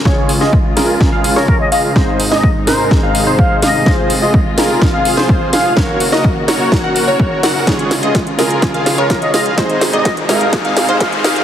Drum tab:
HH |--o---o---o---o-|--o---o---o---o-|--o---o---o---o-|--o---o---o---o-|
SD |o--o--o-o--o----|o--o--o-o-----o-|o-----o-o--o--o-|o--o--o-o-----o-|
BD |o---o---o---o---|o---o---o---o---|o---o---o---o---|o---o---o---o---|

HH |xxoxxxoxxxoxxxox|xxoxxxoxxxoxxxox|
SD |o-o-o-o-o-o-o-o-|o-o-o-o-o-o-o-o-|
BD |o---o---o---o---|o---o---o---o---|